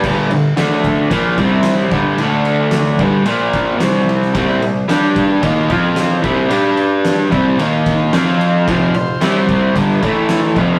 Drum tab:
CC |x---------------|----------------|----------------|----------------|
RD |--x-x-x-x-x-x-x-|x-x-x-x-x-x-x-x-|x-x-x-x-x-x-x-x-|x-x-x-x-x-x-x-x-|
SD |----o-------o---|----o-------o--o|----o-------o---|----o-------o---|
BD |o-----o-o-o---o-|------o---o-----|o-----o-o-o---o-|------o---o-----|

CC |----------------|
RD |x-x-x-x-x-x-x-x-|
SD |----o-------o---|
BD |o-----o-o-o---o-|